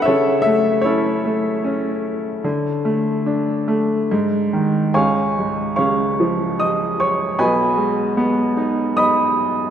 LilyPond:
<<
  \new Staff \with { instrumentName = "Grand piano" } { \time 3/4 \key a \mixolydian \tempo 4 = 75 << { e''8 e''8 cis''2~ | cis''2 r4 | \key cis \mixolydian cis'''4 cis'''4 dis'''8 cis'''8 | b''2 dis'''8. r16 | } \\ { <a' cis''>4 <e' a'>2~ | <e' a'>2 r4 | <cis'' eis'' gis''>4 <cis'' eis''>4 dis''8 cis''8 | <b' dis'' gis''>2 <dis'' b''>8. r16 | } >> }
  \new Staff \with { instrumentName = "Grand piano" } { \clef bass \time 3/4 \key a \mixolydian cis8 a8 cis'8 a8 cis'4 | d8 a8 d'8 a8 gis,8 dis8 | \key cis \mixolydian cis,8 gis,8 cis8 eis4. | <b,, b,>8 gis8 b8 dis'4. | }
>>